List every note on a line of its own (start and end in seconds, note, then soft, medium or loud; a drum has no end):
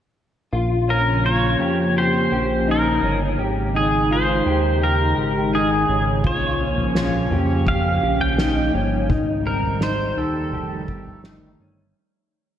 0.53 1.56 A#1 medium
0.53 10.49 C#3 medium
0.53 3.36 F3 medium
0.53 3.36 A#3 medium
0.53 3.36 C#4 medium
0.53 0.88 F4 medium
0.88 1.24 C#4 medium
0.88 1.25 A#4 medium
1.24 1.60 F4 medium
1.24 1.98 C#5 medium
1.60 2.28 F2 loud
1.60 1.95 G4 medium
1.96 2.31 G4 medium
1.96 2.70 C5 medium
2.31 2.99 A#1 medium
2.31 2.67 G4 medium
2.67 3.03 D#4 medium
2.67 3.19 A#4 medium
3.02 3.37 G1 medium
3.02 3.39 C#4 medium
3.38 4.42 G#1 medium
3.38 6.21 D#3 medium
3.38 6.22 G#3 medium
3.38 6.22 D#4 medium
3.38 3.75 G4 medium
3.74 4.10 D#4 medium
3.74 4.12 G#4 medium
4.11 4.46 F4 medium
4.11 4.83 C5 medium
4.46 5.14 D#2 medium
4.46 4.80 G4 medium
4.81 5.16 G4 medium
4.81 5.56 A#4 medium
5.17 5.85 G#1 medium
5.17 5.53 G4 medium
5.53 5.88 D#4 medium
5.53 6.04 G#4 medium
5.88 6.23 G#1 medium
5.88 6.24 C#4 medium
6.23 7.28 A#1 medium
6.23 9.07 F3 medium
6.23 9.06 A#3 medium
6.23 9.07 C#4 medium
6.23 6.60 F4 medium
6.23 7.68 C#5 medium
6.23 kick medium
6.23 floor tom medium
6.61 6.96 C#4 medium
6.77 floor tom medium
6.95 7.32 F4 medium
6.95 snare medium
7.30 7.99 F2 medium
7.30 7.66 G4 medium
7.30 floor tom medium
7.66 8.02 G4 medium
7.66 8.21 F5 loud
7.66 kick medium
7.66 floor tom medium
8.03 8.71 A#1 medium
8.03 8.39 G4 medium
8.20 8.39 G5 medium
8.20 floor tom medium
8.38 8.74 D#4 medium
8.38 8.89 G5 medium
8.38 snare medium
8.74 9.08 G1 medium
8.74 9.09 C#4 medium
9.09 10.13 G#1 medium
9.09 10.51 D#3 medium
9.09 10.51 G3 medium
9.09 10.51 D#4 medium
9.09 9.46 D#4 medium
9.09 kick medium
9.09 floor tom loud
9.46 9.81 C4 medium
9.46 9.82 A#4 medium
9.63 floor tom medium
9.81 10.17 D#4 medium
9.81 10.19 C5 loud
9.81 snare loud
10.17 10.51 D#2 loud
10.17 10.52 G4 medium
10.17 11.21 A4 medium
10.17 floor tom medium
10.52 10.89 F1 loud
10.52 11.94 D#3 medium
10.52 11.94 F3 medium
10.52 11.94 G3 medium
10.52 11.94 A3 medium
10.52 11.94 D#4 medium
10.52 10.88 G4 medium
10.52 floor tom medium
10.88 11.56 G1 medium
10.88 11.25 G4 medium
10.88 kick medium
11.06 floor tom medium
11.24 11.60 D#4 medium
11.24 snare loud
11.60 11.94 G1 medium
11.60 11.96 C#4 medium